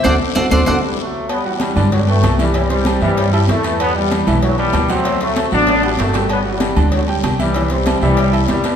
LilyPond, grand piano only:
\new Staff \with { instrumentName = "Grand piano" } { \time 4/4 \key g \major \tempo 4 = 192 <d' fis' a'>8 r8 <d' fis' a'>8 <d' fis' a'>8 <d' fis' a'>8 r4. | r8 <g fis' fis''>4 <d d' d''>4 <b b' g''>4 <e e' e''>8 | <e e' e''>8 <c' c'' c'''>4 <e e' e''>8 <g g' g''>8 <e' e'' e'''>4 <b b' b''>8~ | <b b' b''>8 <g g' g''>4 <e e' e''>4 <b b' b''>4 <fis fis' fis''>8 |
<fis fis' fis''>8 <c' c'' c'''>4 <fis fis' fis''>8 <a a' a''>8 <fis' fis'' fis'''>4 <g g' g''>8~ | <g g' g''>8 <g fis' fis''>4 <d d' d''>4 <g g' g''>4 <e e' e''>8 | <e e' e''>8 <c' c'' c'''>4 <e e' e''>8 <g g' g''>8 <e' e'' e'''>4 <b b' b''>8 | }